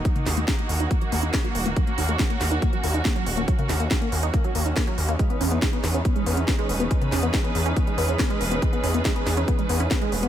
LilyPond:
<<
  \new Staff \with { instrumentName = "String section" } { \time 4/4 \key dis \phrygian \tempo 4 = 140 << { <ais fis'>1~ | <ais fis'>1~ | <ais fis'>1 | <e dis' b'>1~ |
<e dis' b'>1~ | <e dis' b'>1 | } \\ { dis'1 | cis'1~ | cis'1 | gis'1~ |
gis'1~ | gis'1 | } >> }
  \new Staff \with { instrumentName = "Synth arpeggio sound" } { \time 4/4 \key dis \phrygian fis16 ais16 dis'16 ais16 fis16 ais16 r16 dis'16 ais16 fis16 ais16 dis'16 ais16 fis16 r16 ais16 | fis16 ais16 dis'16 ais16 fis16 ais16 r16 dis'16 ais16 fis16 ais16 dis'16 ais16 fis16 r16 ais16 | fis16 ais16 dis'16 ais16 fis16 ais16 r16 dis'16 ais16 fis16 ais16 dis'16 ais16 fis16 r16 ais16 | gis16 b16 cis'16 b16 gis16 b16 r16 cis'16 b16 gis16 b16 cis'16 b16 gis16 r16 b16 |
gis16 b16 cis'16 b16 gis16 b16 r16 cis'16 b16 gis16 b16 cis'16 b16 gis16 r16 b16 | gis16 b16 cis'16 b16 gis16 b16 r16 cis'16 b16 gis16 b16 cis'16 b16 gis16 r16 b16 | }
  \new Staff \with { instrumentName = "Analog synth bass" } { \clef bass \time 4/4 \key dis \phrygian r8 dis,8 r8 dis,8 r8 dis,8 r8 dis,,8 | r8 dis,8 r8 dis,8 r8 dis,8 r8 dis,,8 | r8 dis,8 r8 dis,8 r8 dis,8 r8 dis,8 | r8 e,8 r8 e,8 r8 e,8 r8 e,,8 |
r8 e,8 r8 e,8 r8 e,8 r8 e,,8 | r8 e,8 r8 e,8 r8 e,8 r8 e,,8 | }
  \new DrumStaff \with { instrumentName = "Drums" } \drummode { \time 4/4 <hh bd>16 <hh toml>16 <hho sn>16 hh16 <hh bd sn>16 hh16 hho16 hh16 <hh bd>16 hh16 hho16 hh16 <hh bd sn>16 hh16 hho16 hh16 | <hh bd>16 hh16 hho16 hh16 <hh bd sn>16 hh16 <hho sn>16 hh16 <hh bd>16 hh16 hho16 hh16 <hh bd sn>16 hh16 hho16 hh16 | <hh bd>16 <hh toml>16 <hho sn>16 hh16 <hh bd sn>16 hh16 hho16 hh16 <hh bd>16 hh16 hho16 hh16 <hh bd sn>16 hh16 hho16 hh16 | <hh bd>16 hh16 hho16 hh16 <hh bd sn>16 hh16 <hho sn>16 hh16 <hh bd>16 hh16 hho16 hh16 <hh bd sn>16 hh16 hho16 hh16 |
<hh bd>16 <hh toml>16 <hho sn>16 hh16 <hh bd sn>16 hh16 hho16 hh16 <hh bd>16 hh16 hho16 hh16 <hh bd sn>16 hh16 hho16 hh16 | <hh bd>16 hh16 hho16 hh16 <hh bd sn>16 hh16 <hho sn>16 hh16 <hh bd>16 hh16 hho16 hh16 <hh bd sn>16 hh16 hho16 hh16 | }
>>